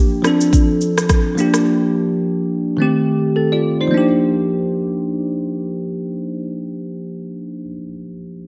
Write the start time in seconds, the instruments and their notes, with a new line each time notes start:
Already playing: tine electric piano F3 A#3 D4 G4
0.22 tine electric piano F3 C4 D4, cross-stick, shaker
0.27 tine electric piano A4
0.41 shaker
0.53 kick, shaker
0.81 shaker
0.98 cross-stick, shaker
1.09 kick, cross-stick, shaker
1.35 tine electric piano F3 A#3 D4, shaker
1.40 tine electric piano G4
1.54 cross-stick, shaker
2.77 tine electric piano D#3 A3 C4
2.82 tine electric piano G4
3.36 tine electric piano C4 A4
3.52 tine electric piano F4 D5
3.81 tine electric piano D#4 C5
3.88 tine electric piano F3 A#3
3.94 tine electric piano D4 G4